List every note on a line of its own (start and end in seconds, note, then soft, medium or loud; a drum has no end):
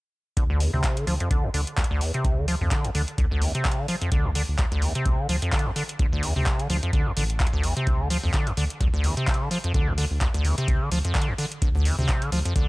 0.37 0.44 D2 medium
0.37 0.69 D2 medium
0.37 kick loud
0.37 closed hi-hat medium
0.50 0.62 D2 loud
0.60 0.71 E2 medium
0.60 open hi-hat loud
0.73 0.82 D2 medium
0.73 0.99 C3 medium
0.84 kick loud
0.84 clap loud
0.84 closed hi-hat medium
0.97 1.05 D3 medium
0.97 closed hi-hat soft
1.07 1.17 D2 medium
1.07 1.14 F3 medium
1.07 open hi-hat medium
1.20 1.29 F2 medium
1.20 closed hi-hat medium
1.31 1.41 D2 medium
1.31 1.45 D3 medium
1.31 kick loud
1.31 closed hi-hat medium
1.44 1.49 D2 medium
1.54 1.64 D2 medium
1.54 1.61 D3 medium
1.54 open hi-hat loud
1.67 closed hi-hat medium
1.77 1.85 D2 medium
1.77 kick loud
1.77 clap loud
1.77 closed hi-hat soft
1.84 closed hi-hat medium
1.91 2.03 D2 loud
2.01 2.12 E2 medium
2.01 open hi-hat medium
2.14 2.39 C3 medium
2.14 closed hi-hat medium
2.24 2.56 D2 loud
2.24 kick loud
2.24 closed hi-hat medium
2.38 2.46 D3 medium
2.48 2.55 F3 medium
2.48 open hi-hat loud
2.61 2.69 D2 medium
2.61 2.70 F2 medium
2.71 2.86 D3 medium
2.71 kick loud
2.71 clap loud
2.71 closed hi-hat medium
2.85 2.90 D2 medium
2.85 closed hi-hat medium
2.95 3.05 D2 medium
2.95 3.02 D3 medium
2.95 open hi-hat medium
3.08 closed hi-hat soft
3.18 3.28 D2 medium
3.18 3.25 D2 medium
3.18 kick loud
3.18 closed hi-hat medium
3.31 3.43 D2 loud
3.42 3.52 D2 medium
3.42 3.53 E2 medium
3.42 open hi-hat loud
3.55 3.80 C3 medium
3.55 closed hi-hat medium
3.65 kick loud
3.65 clap loud
3.65 closed hi-hat soft
3.72 closed hi-hat medium
3.78 3.87 D3 medium
3.88 3.96 F3 medium
3.88 open hi-hat medium
4.02 4.10 F2 medium
4.02 closed hi-hat medium
4.12 4.44 D2 loud
4.12 4.26 D3 medium
4.12 kick loud
4.12 closed hi-hat medium
4.25 4.31 D2 medium
4.35 4.43 D3 medium
4.35 open hi-hat loud
4.49 4.56 D2 medium
4.59 4.66 D2 medium
4.59 kick loud
4.59 clap loud
4.59 closed hi-hat medium
4.72 4.84 D2 loud
4.72 closed hi-hat soft
4.82 4.92 D2 medium
4.82 4.93 E2 medium
4.82 open hi-hat medium
4.95 5.20 C3 medium
4.95 closed hi-hat soft
5.06 5.16 D2 medium
5.06 kick loud
5.06 closed hi-hat medium
5.19 5.27 D3 medium
5.29 5.39 D2 medium
5.29 5.36 F3 medium
5.29 open hi-hat loud
5.42 5.51 F2 medium
5.42 closed hi-hat medium
5.52 5.67 D3 medium
5.52 kick loud
5.52 clap loud
5.52 closed hi-hat soft
5.59 closed hi-hat medium
5.66 5.71 D2 medium
5.76 5.83 D3 medium
5.76 open hi-hat medium
5.89 closed hi-hat medium
5.99 6.31 D2 medium
5.99 6.07 D2 medium
5.99 kick loud
5.99 closed hi-hat medium
6.13 6.24 D2 loud
6.23 6.34 E2 medium
6.23 open hi-hat loud
6.36 6.44 D2 medium
6.36 6.61 C3 medium
6.46 kick loud
6.46 clap loud
6.46 closed hi-hat medium
6.59 6.68 D3 medium
6.59 closed hi-hat soft
6.70 6.80 D2 medium
6.70 6.77 F3 medium
6.70 open hi-hat medium
6.83 6.91 F2 medium
6.83 closed hi-hat soft
6.93 7.03 D2 medium
6.93 7.08 D3 medium
6.93 kick loud
6.93 closed hi-hat medium
7.07 7.12 D2 medium
7.17 7.72 A1 medium
7.17 7.24 D3 medium
7.17 open hi-hat loud
7.30 closed hi-hat medium
7.40 7.47 D2 medium
7.40 kick loud
7.40 clap loud
7.40 closed hi-hat soft
7.47 closed hi-hat medium
7.53 7.65 D2 loud
7.63 7.74 E2 medium
7.63 open hi-hat medium
7.77 8.01 C3 medium
7.77 closed hi-hat soft
7.87 8.19 D2 medium
7.87 kick loud
7.87 closed hi-hat medium
8.00 8.09 D3 medium
8.10 8.18 F3 medium
8.10 open hi-hat loud
8.23 8.31 D2 medium
8.23 8.32 F2 medium
8.34 8.48 D3 medium
8.34 kick loud
8.34 clap loud
8.34 closed hi-hat medium
8.47 8.53 D2 medium
8.47 closed hi-hat soft
8.57 8.67 D2 medium
8.57 8.64 D3 medium
8.57 open hi-hat medium
8.70 closed hi-hat soft
8.81 8.88 D2 medium
8.81 8.91 D2 medium
8.81 kick loud
8.81 closed hi-hat medium
8.94 9.05 D2 loud
9.04 9.14 D2 medium
9.04 9.15 E2 medium
9.04 open hi-hat loud
9.17 9.42 C3 medium
9.17 closed hi-hat soft
9.27 kick loud
9.27 clap loud
9.27 closed hi-hat soft
9.34 closed hi-hat medium
9.41 9.49 D3 medium
9.51 9.58 F3 medium
9.51 open hi-hat medium
9.64 9.73 F2 medium
9.64 closed hi-hat soft
9.74 10.06 D2 loud
9.74 9.89 D3 medium
9.74 kick loud
9.74 closed hi-hat medium
9.88 9.93 D2 medium
9.98 10.05 D3 medium
9.98 open hi-hat loud
10.11 10.19 D2 medium
10.21 10.29 D2 medium
10.21 kick medium
10.21 clap loud
10.21 closed hi-hat medium
10.34 10.46 D2 loud
10.34 closed hi-hat medium
10.45 10.55 D2 medium
10.45 10.56 E2 medium
10.45 open hi-hat medium
10.58 10.83 C3 medium
10.58 closed hi-hat medium
10.68 10.78 D2 medium
10.68 kick loud
10.68 closed hi-hat medium
10.81 10.90 D3 medium
10.92 11.02 D2 medium
10.92 10.99 F3 medium
10.92 open hi-hat medium
11.05 11.13 F2 medium
11.05 closed hi-hat medium
11.15 11.30 D3 medium
11.15 kick loud
11.15 clap loud
11.15 closed hi-hat soft
11.22 closed hi-hat medium
11.28 11.34 D2 medium
11.38 11.46 D3 medium
11.38 open hi-hat medium
11.52 closed hi-hat medium
11.62 11.69 D2 medium
11.62 11.94 D2 loud
11.62 kick loud
11.62 closed hi-hat medium
11.75 11.87 D2 loud
11.85 11.96 E2 medium
11.85 open hi-hat loud
11.98 12.06 D2 medium
11.98 12.23 C3 medium
12.09 kick loud
12.09 clap loud
12.09 closed hi-hat medium
12.22 12.30 D3 medium
12.22 closed hi-hat medium
12.32 12.42 D2 medium
12.32 12.40 F3 medium
12.32 open hi-hat medium
12.45 12.54 F2 medium
12.45 closed hi-hat medium
12.56 12.66 D2 medium
12.56 12.68 D3 medium
12.56 kick loud
12.56 closed hi-hat medium